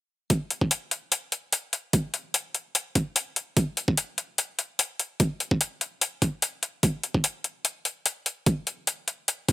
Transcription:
0, 0, Header, 1, 2, 480
1, 0, Start_track
1, 0, Tempo, 408163
1, 355, Time_signature, 4, 2, 24, 8
1, 11199, End_track
2, 0, Start_track
2, 0, Title_t, "Drums"
2, 354, Note_on_c, 9, 36, 106
2, 354, Note_on_c, 9, 42, 74
2, 471, Note_off_c, 9, 42, 0
2, 472, Note_off_c, 9, 36, 0
2, 594, Note_on_c, 9, 42, 50
2, 711, Note_off_c, 9, 42, 0
2, 722, Note_on_c, 9, 36, 53
2, 834, Note_on_c, 9, 42, 76
2, 840, Note_off_c, 9, 36, 0
2, 951, Note_off_c, 9, 42, 0
2, 1074, Note_on_c, 9, 42, 47
2, 1191, Note_off_c, 9, 42, 0
2, 1314, Note_on_c, 9, 42, 76
2, 1431, Note_off_c, 9, 42, 0
2, 1553, Note_on_c, 9, 42, 49
2, 1671, Note_off_c, 9, 42, 0
2, 1794, Note_on_c, 9, 42, 73
2, 1911, Note_off_c, 9, 42, 0
2, 2033, Note_on_c, 9, 42, 49
2, 2151, Note_off_c, 9, 42, 0
2, 2273, Note_on_c, 9, 42, 77
2, 2274, Note_on_c, 9, 36, 110
2, 2391, Note_off_c, 9, 42, 0
2, 2392, Note_off_c, 9, 36, 0
2, 2513, Note_on_c, 9, 42, 50
2, 2631, Note_off_c, 9, 42, 0
2, 2753, Note_on_c, 9, 42, 76
2, 2871, Note_off_c, 9, 42, 0
2, 2993, Note_on_c, 9, 42, 47
2, 3111, Note_off_c, 9, 42, 0
2, 3234, Note_on_c, 9, 42, 73
2, 3351, Note_off_c, 9, 42, 0
2, 3474, Note_on_c, 9, 36, 58
2, 3474, Note_on_c, 9, 42, 50
2, 3591, Note_off_c, 9, 42, 0
2, 3592, Note_off_c, 9, 36, 0
2, 3713, Note_on_c, 9, 42, 75
2, 3831, Note_off_c, 9, 42, 0
2, 3954, Note_on_c, 9, 42, 51
2, 4072, Note_off_c, 9, 42, 0
2, 4194, Note_on_c, 9, 36, 115
2, 4194, Note_on_c, 9, 42, 73
2, 4311, Note_off_c, 9, 42, 0
2, 4312, Note_off_c, 9, 36, 0
2, 4434, Note_on_c, 9, 42, 50
2, 4552, Note_off_c, 9, 42, 0
2, 4563, Note_on_c, 9, 36, 59
2, 4674, Note_on_c, 9, 42, 76
2, 4680, Note_off_c, 9, 36, 0
2, 4792, Note_off_c, 9, 42, 0
2, 4914, Note_on_c, 9, 42, 48
2, 5032, Note_off_c, 9, 42, 0
2, 5154, Note_on_c, 9, 42, 72
2, 5272, Note_off_c, 9, 42, 0
2, 5394, Note_on_c, 9, 42, 48
2, 5511, Note_off_c, 9, 42, 0
2, 5634, Note_on_c, 9, 42, 75
2, 5751, Note_off_c, 9, 42, 0
2, 5874, Note_on_c, 9, 42, 49
2, 5991, Note_off_c, 9, 42, 0
2, 6114, Note_on_c, 9, 36, 114
2, 6114, Note_on_c, 9, 42, 71
2, 6232, Note_off_c, 9, 36, 0
2, 6232, Note_off_c, 9, 42, 0
2, 6354, Note_on_c, 9, 42, 49
2, 6471, Note_off_c, 9, 42, 0
2, 6482, Note_on_c, 9, 36, 59
2, 6594, Note_on_c, 9, 42, 73
2, 6600, Note_off_c, 9, 36, 0
2, 6711, Note_off_c, 9, 42, 0
2, 6834, Note_on_c, 9, 42, 47
2, 6951, Note_off_c, 9, 42, 0
2, 7073, Note_on_c, 9, 42, 70
2, 7191, Note_off_c, 9, 42, 0
2, 7313, Note_on_c, 9, 42, 47
2, 7314, Note_on_c, 9, 36, 59
2, 7431, Note_off_c, 9, 42, 0
2, 7432, Note_off_c, 9, 36, 0
2, 7553, Note_on_c, 9, 42, 73
2, 7671, Note_off_c, 9, 42, 0
2, 7793, Note_on_c, 9, 42, 48
2, 7911, Note_off_c, 9, 42, 0
2, 8033, Note_on_c, 9, 42, 70
2, 8034, Note_on_c, 9, 36, 107
2, 8151, Note_off_c, 9, 42, 0
2, 8152, Note_off_c, 9, 36, 0
2, 8273, Note_on_c, 9, 42, 46
2, 8390, Note_off_c, 9, 42, 0
2, 8403, Note_on_c, 9, 36, 56
2, 8513, Note_on_c, 9, 42, 69
2, 8520, Note_off_c, 9, 36, 0
2, 8631, Note_off_c, 9, 42, 0
2, 8753, Note_on_c, 9, 42, 45
2, 8871, Note_off_c, 9, 42, 0
2, 8993, Note_on_c, 9, 42, 67
2, 9111, Note_off_c, 9, 42, 0
2, 9233, Note_on_c, 9, 42, 44
2, 9351, Note_off_c, 9, 42, 0
2, 9474, Note_on_c, 9, 42, 69
2, 9591, Note_off_c, 9, 42, 0
2, 9714, Note_on_c, 9, 42, 46
2, 9831, Note_off_c, 9, 42, 0
2, 9954, Note_on_c, 9, 42, 70
2, 9955, Note_on_c, 9, 36, 105
2, 10071, Note_off_c, 9, 42, 0
2, 10072, Note_off_c, 9, 36, 0
2, 10194, Note_on_c, 9, 42, 46
2, 10312, Note_off_c, 9, 42, 0
2, 10434, Note_on_c, 9, 42, 71
2, 10552, Note_off_c, 9, 42, 0
2, 10674, Note_on_c, 9, 42, 46
2, 10792, Note_off_c, 9, 42, 0
2, 10914, Note_on_c, 9, 42, 70
2, 11032, Note_off_c, 9, 42, 0
2, 11154, Note_on_c, 9, 42, 46
2, 11155, Note_on_c, 9, 36, 53
2, 11199, Note_off_c, 9, 36, 0
2, 11199, Note_off_c, 9, 42, 0
2, 11199, End_track
0, 0, End_of_file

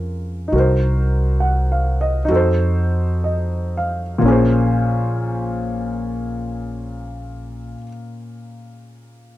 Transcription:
0, 0, Header, 1, 3, 480
1, 0, Start_track
1, 0, Key_signature, -5, "minor"
1, 0, Tempo, 859599
1, 298, Time_signature, 4, 2, 24, 8
1, 781, Tempo, 917431
1, 1741, Tempo, 996678
1, 2221, Tempo, 1029160
1, 4621, End_track
2, 0, Start_track
2, 0, Title_t, "Grand piano"
2, 0, Program_c, 0, 0
2, 0, Control_c, 0, 64, 127
2, 0, Note_on_c, 0, 61, 45
2, 0, Note_on_c, 0, 65, 37
2, 0, Note_on_c, 0, 68, 41
2, 0, Note_on_c, 0, 70, 39
2, 0, Note_on_c, 0, 72, 47
2, 267, Note_on_c, 0, 63, 43
2, 291, Note_on_c, 0, 66, 41
2, 294, Note_off_c, 0, 61, 0
2, 297, Note_off_c, 0, 65, 0
2, 302, Note_off_c, 0, 70, 0
2, 304, Note_off_c, 0, 68, 0
2, 304, Control_c, 0, 64, 0
2, 310, Note_off_c, 0, 72, 0
2, 310, Note_on_c, 0, 70, 43
2, 330, Note_on_c, 0, 72, 49
2, 414, Control_c, 0, 64, 127
2, 783, Note_on_c, 0, 78, 41
2, 948, Note_on_c, 0, 77, 39
2, 1072, Note_off_c, 0, 78, 0
2, 1101, Note_on_c, 0, 75, 43
2, 1186, Note_off_c, 0, 77, 0
2, 1217, Note_off_c, 0, 63, 0
2, 1225, Note_on_c, 0, 63, 52
2, 1236, Note_off_c, 0, 66, 0
2, 1243, Note_on_c, 0, 66, 44
2, 1258, Note_off_c, 0, 70, 0
2, 1259, Control_c, 0, 64, 0
2, 1259, Note_on_c, 0, 69, 45
2, 1268, Note_off_c, 0, 72, 0
2, 1281, Note_on_c, 0, 72, 53
2, 1344, Note_off_c, 0, 75, 0
2, 1360, Control_c, 0, 64, 127
2, 1744, Note_on_c, 0, 75, 36
2, 2001, Note_on_c, 0, 77, 45
2, 2121, Note_off_c, 0, 75, 0
2, 2199, Note_on_c, 0, 46, 55
2, 2210, Note_off_c, 0, 63, 0
2, 2212, Note_on_c, 0, 58, 47
2, 2218, Note_off_c, 0, 66, 0
2, 2225, Note_off_c, 0, 69, 0
2, 2229, Control_c, 0, 64, 0
2, 2232, Note_on_c, 0, 61, 50
2, 2235, Note_off_c, 0, 72, 0
2, 2244, Note_on_c, 0, 68, 52
2, 2257, Note_on_c, 0, 72, 53
2, 2312, Control_c, 0, 64, 127
2, 2337, Note_off_c, 0, 77, 0
2, 3863, Note_off_c, 0, 46, 0
2, 3876, Note_off_c, 0, 58, 0
2, 3895, Note_off_c, 0, 61, 0
2, 3907, Note_off_c, 0, 68, 0
2, 3920, Note_off_c, 0, 72, 0
2, 4621, End_track
3, 0, Start_track
3, 0, Title_t, "Upright bass"
3, 0, Program_c, 1, 32
3, 0, Note_on_c, 1, 41, 69
3, 274, Note_off_c, 1, 41, 0
3, 293, Note_on_c, 1, 36, 66
3, 1229, Note_off_c, 1, 36, 0
3, 1244, Note_on_c, 1, 41, 80
3, 2199, Note_off_c, 1, 41, 0
3, 2215, Note_on_c, 1, 34, 69
3, 3860, Note_off_c, 1, 34, 0
3, 4621, End_track
0, 0, End_of_file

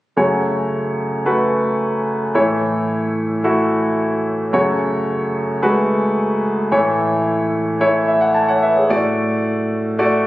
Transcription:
0, 0, Header, 1, 2, 480
1, 0, Start_track
1, 0, Key_signature, 3, "minor"
1, 0, Tempo, 545603
1, 147, Time_signature, 4, 2, 24, 8
1, 9033, End_track
2, 0, Start_track
2, 0, Title_t, "Grand piano"
2, 0, Program_c, 0, 0
2, 146, Note_on_c, 0, 57, 57
2, 148, Note_on_c, 0, 42, 47
2, 150, Note_on_c, 0, 49, 49
2, 151, Note_on_c, 0, 66, 51
2, 152, Note_on_c, 0, 73, 62
2, 338, Control_c, 0, 64, 127
2, 995, Note_off_c, 0, 57, 0
2, 997, Note_off_c, 0, 66, 0
2, 998, Note_off_c, 0, 73, 0
2, 1105, Note_on_c, 0, 57, 59
2, 1107, Note_on_c, 0, 66, 54
2, 1110, Note_on_c, 0, 71, 68
2, 1954, Note_off_c, 0, 57, 0
2, 1955, Note_off_c, 0, 66, 0
2, 1957, Note_off_c, 0, 71, 0
2, 2033, Note_off_c, 0, 42, 0
2, 2034, Note_off_c, 0, 49, 0
2, 2064, Note_on_c, 0, 57, 63
2, 2067, Note_on_c, 0, 45, 52
2, 2067, Note_on_c, 0, 52, 53
2, 2067, Note_on_c, 0, 64, 56
2, 2068, Note_on_c, 0, 73, 69
2, 2078, Control_c, 0, 64, 0
2, 2238, Control_c, 0, 64, 127
2, 2914, Note_off_c, 0, 57, 0
2, 2915, Note_off_c, 0, 64, 0
2, 2916, Note_off_c, 0, 73, 0
2, 3026, Note_on_c, 0, 57, 61
2, 3029, Note_on_c, 0, 64, 55
2, 3030, Note_on_c, 0, 66, 66
2, 3875, Note_off_c, 0, 57, 0
2, 3876, Note_off_c, 0, 64, 0
2, 3877, Note_off_c, 0, 66, 0
2, 3952, Note_off_c, 0, 45, 0
2, 3952, Note_off_c, 0, 52, 0
2, 3985, Note_on_c, 0, 57, 62
2, 3987, Note_on_c, 0, 42, 54
2, 3987, Note_on_c, 0, 66, 60
2, 3988, Note_on_c, 0, 49, 53
2, 3989, Note_on_c, 0, 73, 73
2, 3999, Control_c, 0, 64, 0
2, 4162, Control_c, 0, 64, 127
2, 4834, Note_off_c, 0, 57, 0
2, 4835, Note_off_c, 0, 66, 0
2, 4836, Note_off_c, 0, 73, 0
2, 4946, Note_on_c, 0, 56, 54
2, 4951, Note_on_c, 0, 66, 59
2, 4951, Note_on_c, 0, 71, 73
2, 5004, Note_off_c, 0, 56, 0
2, 5004, Note_on_c, 0, 57, 69
2, 5797, Note_off_c, 0, 66, 0
2, 5797, Note_off_c, 0, 71, 0
2, 5823, Note_off_c, 0, 57, 0
2, 5871, Note_off_c, 0, 42, 0
2, 5872, Note_off_c, 0, 49, 0
2, 5908, Note_on_c, 0, 57, 65
2, 5909, Note_on_c, 0, 52, 58
2, 5909, Note_on_c, 0, 64, 59
2, 5911, Note_on_c, 0, 45, 54
2, 5911, Note_on_c, 0, 73, 70
2, 5919, Control_c, 0, 64, 0
2, 6067, Control_c, 0, 64, 127
2, 6756, Note_off_c, 0, 57, 0
2, 6756, Note_off_c, 0, 64, 0
2, 6757, Note_off_c, 0, 73, 0
2, 6867, Note_on_c, 0, 57, 66
2, 6869, Note_on_c, 0, 64, 64
2, 6870, Note_on_c, 0, 73, 74
2, 7107, Note_on_c, 0, 76, 60
2, 7218, Note_off_c, 0, 76, 0
2, 7221, Note_on_c, 0, 78, 54
2, 7335, Note_off_c, 0, 78, 0
2, 7340, Note_on_c, 0, 81, 57
2, 7348, Note_off_c, 0, 73, 0
2, 7464, Note_on_c, 0, 78, 59
2, 7470, Note_on_c, 0, 73, 47
2, 7579, Note_off_c, 0, 78, 0
2, 7582, Note_off_c, 0, 73, 0
2, 7587, Note_on_c, 0, 76, 58
2, 7594, Note_on_c, 0, 71, 48
2, 7701, Note_off_c, 0, 76, 0
2, 7704, Note_off_c, 0, 71, 0
2, 7707, Note_on_c, 0, 73, 54
2, 7715, Note_off_c, 0, 57, 0
2, 7715, Note_on_c, 0, 68, 46
2, 7716, Note_off_c, 0, 64, 0
2, 7789, Note_off_c, 0, 81, 0
2, 7792, Note_off_c, 0, 52, 0
2, 7793, Note_off_c, 0, 45, 0
2, 7828, Note_on_c, 0, 57, 66
2, 7829, Note_on_c, 0, 66, 63
2, 7832, Note_on_c, 0, 45, 57
2, 7832, Note_on_c, 0, 74, 78
2, 7839, Control_c, 0, 64, 0
2, 7935, Note_off_c, 0, 73, 0
2, 7939, Note_off_c, 0, 68, 0
2, 8000, Control_c, 0, 64, 127
2, 8675, Note_off_c, 0, 57, 0
2, 8675, Note_off_c, 0, 66, 0
2, 8677, Note_off_c, 0, 74, 0
2, 8786, Note_on_c, 0, 57, 73
2, 8789, Note_on_c, 0, 66, 62
2, 8790, Note_on_c, 0, 74, 76
2, 9033, Note_off_c, 0, 45, 0
2, 9033, Note_off_c, 0, 57, 0
2, 9033, Note_off_c, 0, 66, 0
2, 9033, Note_off_c, 0, 74, 0
2, 9033, End_track
0, 0, End_of_file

